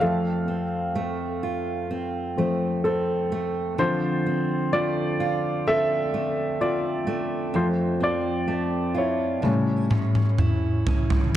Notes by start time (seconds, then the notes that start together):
Already playing: A3 C4 F4
0.00 F2 F3 A3 C4 A4 F5
0.48 C4
0.95 A3
1.43 F4
1.91 C4
2.37 F3 A3 C4
2.84 C4 A4
3.32 A3
3.78 D3 F3 C4 F4 C5
4.26 C4
4.73 A3 F4 D5
5.20 F4
5.67 C4 A4 E5
6.14 A3
6.61 C4 F4 D5
7.07 A3
7.54 F2 F3 A3 C4 F4 C5
8.00 C4 F4 D5
8.48 A3
8.94 E4 F4 C#5
9.42 A2 G3 C#4, high tom
9.90 C#4, mid tom
10.15 mid tom
10.38 E4, mid tom
10.87 C#4, floor tom
11.10 floor tom